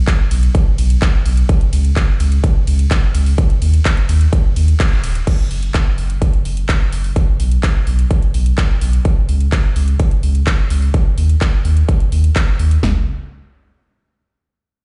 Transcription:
0.07 kick, clap, closed hi-hat
0.31 sub bass B1, open hi-hat, ride
0.43 closed hi-hat
0.55 kick, closed hi-hat
0.78 sub bass B1, open hi-hat, ride
0.90 closed hi-hat
1.02 kick, clap, closed hi-hat
1.26 sub bass B1, open hi-hat, ride
1.37 closed hi-hat
1.49 kick, closed hi-hat
1.61 closed hi-hat
1.73 sub bass C#2, open hi-hat, ride
1.85 closed hi-hat
1.96 kick, clap, closed hi-hat
2.20 sub bass C#2, open hi-hat, ride
2.32 closed hi-hat
2.44 kick, closed hi-hat
2.67 sub bass C#2, open hi-hat, ride
2.79 closed hi-hat
2.91 kick, clap, closed hi-hat
3.15 sub bass C#2, open hi-hat, ride
3.26 open hi-hat
3.38 kick, closed hi-hat
3.50 closed hi-hat
3.62 sub bass D#2, open hi-hat, ride
3.74 closed hi-hat
3.85 kick, clap, closed hi-hat
3.97 closed hi-hat
4.09 sub bass D#2, open hi-hat, ride
4.21 closed hi-hat
4.33 kick, closed hi-hat
4.56 sub bass D#2, open hi-hat, ride
4.68 closed hi-hat
4.80 kick, clap, closed hi-hat
5.04 sub bass D#1, open hi-hat, ride
5.15 closed hi-hat
5.27 kick, closed hi-hat, crash
5.51 sub bass F#1, open hi-hat
5.63 closed hi-hat
5.74 kick, clap, closed hi-hat
5.98 sub bass F#1, open hi-hat
6.10 closed hi-hat
6.22 kick, closed hi-hat
6.33 closed hi-hat
6.45 sub bass F#1, open hi-hat
6.57 closed hi-hat
6.69 kick, clap, closed hi-hat
6.92 sub bass F#1, open hi-hat
7.04 open hi-hat
7.16 kick, closed hi-hat
7.40 sub bass B1, open hi-hat
7.52 closed hi-hat
7.63 kick, clap, closed hi-hat
7.87 sub bass B1, open hi-hat
7.99 closed hi-hat
8.11 kick, closed hi-hat
8.22 closed hi-hat
8.34 sub bass B1, open hi-hat
8.46 closed hi-hat
8.58 kick, clap, closed hi-hat
8.81 sub bass B1, open hi-hat
8.93 closed hi-hat
9.05 kick, closed hi-hat
9.29 sub bass C#2, open hi-hat
9.41 closed hi-hat
9.52 kick, clap, closed hi-hat
9.76 sub bass C#2, open hi-hat
9.88 closed hi-hat
10.00 kick, closed hi-hat
10.11 closed hi-hat
10.23 sub bass C#2, open hi-hat
10.35 closed hi-hat
10.47 kick, clap, closed hi-hat
10.70 sub bass C#2, open hi-hat
10.82 open hi-hat
10.94 kick, closed hi-hat
11.18 sub bass D#2, open hi-hat
11.29 closed hi-hat
11.41 kick, clap, closed hi-hat
11.65 sub bass D#2, open hi-hat
11.77 closed hi-hat
11.89 kick, closed hi-hat
12.00 closed hi-hat
12.12 sub bass D#2, open hi-hat
12.24 closed hi-hat
12.36 kick, clap, closed hi-hat
12.59 sub bass D#2, open hi-hat
12.71 closed hi-hat
12.83 sub bass F#1, snare, floor tom

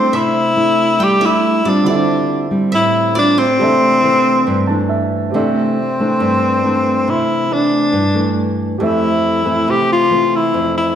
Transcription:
Already playing: nylon-string guitar G3 A3 D4 E4, tenor saxophone C4, grand piano C4 G4 A4 D5 E5, koto C5 D5 E5
0.13 nylon-string guitar C3, tenor saxophone E4, koto E5
0.56 nylon-string guitar A3 D4 E4
0.99 nylon-string guitar G3, koto G5
1.03 tenor saxophone G4
1.20 nylon-string guitar A3 D4 E4, koto E5
1.26 tenor saxophone E4
1.65 nylon-string guitar G3 C4 F4, koto D5
1.69 tenor saxophone D4
1.84 grand piano D3 E4 G4 A4, nylon-string guitar D3, koto D5
1.89 tenor saxophone D4, grand piano C5 E5
2.51 nylon-string guitar G3 C4
2.72 nylon-string guitar A2, tenor saxophone E4, koto E5
3.15 nylon-string guitar G3 C4 F4, tenor saxophone D4, koto D5
3.38 tenor saxophone C4, koto C5
3.57 nylon-string guitar C3 E3 A3, grand piano C4 G4 A4
3.61 nylon-string guitar D4, grand piano D5 E5
4.03 nylon-string guitar E3 A3 D4
4.47 nylon-string guitar G2
4.67 nylon-string guitar E3 A3 D4, grand piano A5
4.89 grand piano E5
5.30 grand piano C4 G4 A4
5.34 nylon-string guitar C3 E3 A3 D4, tenor saxophone C4, grand piano D5 E5
5.99 nylon-string guitar E3 A3 D4
6.20 nylon-string guitar G2
6.64 nylon-string guitar E3 A3 D4
7.08 nylon-string guitar C3, tenor saxophone E4
7.50 nylon-string guitar E3 A3 D4, tenor saxophone D4
7.93 nylon-string guitar G2
8.14 nylon-string guitar E3 A3 D4
8.78 nylon-string guitar F2 E3 A3 C4, grand piano G4 A4 C5
8.83 tenor saxophone E4, grand piano E5
9.45 nylon-string guitar E3 A3 C4
9.68 nylon-string guitar C3, tenor saxophone G4
9.93 tenor saxophone F4
10.11 nylon-string guitar E3 A3 C4
10.36 tenor saxophone E4
10.54 nylon-string guitar F2
10.78 tenor saxophone E4

